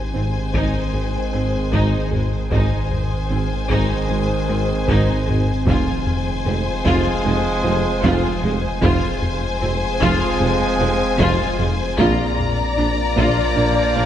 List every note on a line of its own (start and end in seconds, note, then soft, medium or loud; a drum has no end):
0.00 2.51 G#1 medium
0.00 2.47 D#3 medium
0.00 2.48 D#3 medium
0.00 2.47 G#3 medium
0.00 2.35 C4 medium
0.00 2.48 C4 medium
0.00 2.51 G#4 medium
0.00 2.35 C5 medium
0.00 2.47 C5 medium
0.00 2.48 C5 medium
0.00 2.50 G#5 medium
0.14 0.22 G#1 medium
0.14 0.30 G#1 medium
0.14 0.23 G#2 medium
0.14 0.39 G#2 medium
0.14 0.38 C4 medium
0.14 0.24 C4 medium
0.54 0.62 G#1 medium
0.54 0.70 G#1 medium
0.54 0.62 G#2 medium
0.54 0.78 G#2 medium
0.54 0.78 G#3 medium
0.54 0.91 D#4 medium
0.54 taiko medium
0.93 1.09 G#1 medium
0.93 1.02 G#1 medium
0.93 1.01 G#2 medium
0.93 1.18 G#2 medium
0.93 1.02 G#3 medium
0.93 1.18 C4 medium
1.32 1.48 G#1 medium
1.32 1.41 G#1 soft
1.32 1.41 G#2 medium
1.32 1.57 G#2 medium
1.32 1.42 C4 medium
1.32 1.57 G#4 medium
1.72 1.88 G#1 medium
1.72 1.80 G#1 medium
1.72 1.80 G#2 medium
1.72 1.97 G#2 loud
1.72 1.96 G#3 medium
1.72 2.10 D#4 medium
1.72 taiko medium
2.11 2.19 G#1 soft
2.11 2.28 G#1 medium
2.11 2.20 G#2 medium
2.11 2.36 G#2 medium
2.11 2.21 G#3 medium
2.11 2.35 G#4 medium
2.11 taiko low soft
2.51 2.67 G#1 medium
2.51 2.59 G#1 medium
2.51 5.69 G#1 medium
2.51 2.59 G#2 medium
2.51 2.75 G#2 medium
2.51 5.50 D#3 medium
2.51 5.64 D#3 medium
2.51 2.75 G#3 medium
2.51 5.50 G#3 medium
2.51 5.64 C4 medium
2.51 2.89 D#4 medium
2.51 5.64 G#4 medium
2.51 5.63 C5 medium
2.51 5.64 C5 medium
2.51 5.63 G#5 medium
2.51 taiko loud
2.91 3.15 G#2 medium
2.91 taiko low medium
3.30 3.38 G#1 medium
3.30 3.46 G#1 medium
3.30 3.39 G#2 medium
3.30 3.55 G#2 medium
3.30 3.54 C4 medium
3.30 3.39 C4 medium
3.69 3.85 G#1 medium
3.69 3.78 G#1 medium
3.69 3.78 G#2 medium
3.69 3.94 G#2 medium
3.69 3.93 G#3 medium
3.69 4.07 D#4 medium
3.69 taiko medium
4.08 4.25 G#1 medium
4.08 4.18 G#1 medium
4.08 4.34 G#2 medium
4.08 4.18 G#2 medium
4.08 4.18 G#3 medium
4.08 4.33 C4 medium
4.48 4.56 G#1 medium
4.48 4.65 G#1 medium
4.48 4.57 G#2 medium
4.48 4.73 G#2 medium
4.48 4.57 C4 medium
4.48 4.72 G#4 medium
4.88 4.96 G#1 medium
4.88 5.04 G#1 medium
4.88 5.12 G#2 medium
4.88 4.96 G#2 loud
4.88 5.12 G#3 loud
4.88 5.25 D#4 medium
4.88 taiko medium
5.27 5.44 G#1 medium
5.27 5.36 G#1 medium
5.27 5.36 G#2 medium
5.27 5.52 G#2 medium
5.27 5.36 G#3 medium
5.27 5.51 G#4 medium
5.27 taiko low soft
5.67 5.83 F1 medium
5.67 5.75 F1 loud
5.67 8.82 F1 medium
5.67 5.75 F2 loud
5.67 5.91 F2 medium
5.67 5.91 F3 loud
5.67 8.79 F3 medium
5.67 8.81 F3 medium
5.67 8.79 G#3 loud
5.67 8.79 C4 medium
5.67 8.80 C4 medium
5.67 6.04 F4 medium
5.67 8.79 G#4 medium
5.67 8.79 C5 medium
5.67 8.79 G#5 medium
5.67 taiko loud
6.07 6.31 F2 medium
6.07 taiko low medium
6.45 6.53 F1 medium
6.45 6.62 F1 medium
6.45 6.70 F2 medium
6.45 6.54 F2 medium
6.45 6.70 G#3 medium
6.45 6.55 C4 medium
6.85 6.93 F1 loud
6.85 7.01 F1 medium
6.85 6.93 F2 medium
6.85 7.09 F2 loud
6.85 7.09 F3 loud
6.85 7.22 F4 loud
6.85 taiko loud
7.24 7.40 F1 medium
7.24 7.32 F1 medium
7.24 7.32 F2 medium
7.24 7.49 F2 medium
7.24 7.49 G#3 medium
7.24 7.33 G#3 medium
7.63 7.80 F1 medium
7.63 7.72 F1 medium
7.63 7.88 F2 medium
7.63 7.72 F2 medium
7.63 7.72 C4 medium
7.63 7.88 F4 medium
8.03 8.19 F1 loud
8.03 8.12 F1 loud
8.03 8.27 F2 loud
8.03 8.12 F2 loud
8.03 8.27 F3 loud
8.03 8.41 F4 loud
8.03 taiko medium
8.43 8.59 F1 medium
8.43 8.51 F1 medium
8.43 8.67 F2 medium
8.43 8.52 F2 medium
8.43 8.51 G#3 medium
8.43 8.67 F4 medium
8.43 taiko low medium
8.82 8.98 F1 loud
8.82 8.91 F1 loud
8.82 12.00 F1 medium
8.82 9.07 F2 loud
8.82 8.91 F2 loud
8.82 9.06 F3 loud
8.82 11.95 F3 medium
8.82 11.82 F3 loud
8.82 11.82 G#3 loud
8.82 11.82 C4 loud
8.82 11.95 C4 medium
8.82 9.19 F4 loud
8.82 11.95 G#4 medium
8.82 11.82 C5 loud
8.82 11.95 C5 medium
8.82 11.95 G#5 loud
8.82 taiko loud
9.22 9.46 F2 medium
9.22 taiko low medium
9.61 9.77 F1 medium
9.61 9.70 F1 medium
9.61 9.85 F2 medium
9.61 9.70 F2 medium
9.61 9.85 G#3 medium
9.61 9.70 C4 medium
10.00 10.16 F1 loud
10.00 10.09 F1 loud
10.00 10.25 F2 loud
10.00 10.10 F2 loud
10.00 10.25 F3 loud
10.00 10.38 F4 loud
10.00 taiko loud
10.40 10.56 F1 medium
10.40 10.48 F1 medium
10.40 10.64 F2 medium
10.40 10.49 F2 medium
10.40 10.64 G#3 medium
10.40 10.49 G#3 medium
10.80 10.96 F1 medium
10.80 10.88 F1 medium
10.80 11.04 F2 medium
10.80 10.88 F2 medium
10.80 10.88 C4 medium
10.80 11.04 F4 medium
11.19 11.35 F1 loud
11.19 11.28 F1 loud
11.19 11.27 F2 loud
11.19 11.43 F2 loud
11.19 11.43 F3 loud
11.19 11.57 F4 loud
11.19 taiko medium
11.58 11.74 F1 medium
11.58 11.66 F1 medium
11.58 11.83 F2 medium
11.58 11.67 F2 medium
11.58 11.67 G#3 medium
11.58 11.83 F4 medium
11.58 taiko low medium
11.98 12.14 A#1 loud
11.98 12.07 A#1 loud
11.98 14.06 A#1 medium
11.98 12.07 A#2 loud
11.98 12.23 A#2 loud
11.98 14.06 F3 medium
11.98 14.06 F3 loud
11.98 12.22 A#3 loud
11.98 14.06 A#3 medium
11.98 14.06 A#3 loud
11.98 14.06 D4 loud
11.98 12.36 F4 loud
11.98 14.06 A#4 medium
11.98 14.06 A#4 loud
11.98 14.06 D5 medium
11.98 14.06 A#5 loud
11.98 taiko loud
12.38 12.62 A#2 medium
12.38 taiko low medium
12.77 12.93 A#1 medium
12.77 12.86 A#1 medium
12.77 13.02 A#2 medium
12.77 12.86 A#2 medium
12.77 13.01 D4 medium
12.77 12.86 D4 medium
13.16 13.33 A#1 medium
13.16 13.25 A#1 medium
13.16 13.41 A#2 loud
13.16 13.25 A#2 loud
13.16 13.40 A#3 loud
13.16 13.54 F4 medium
13.16 taiko loud
13.56 13.64 A#1 medium
13.56 13.72 A#1 medium
13.56 13.81 A#2 medium
13.56 13.65 A#2 medium
13.56 13.64 A#3 medium
13.56 13.80 D4 medium
13.95 14.06 A#1 medium
13.95 14.04 A#1 medium
13.95 14.06 A#2 medium
13.95 14.05 A#2 medium
13.95 14.04 D4 medium
13.95 14.06 A#4 medium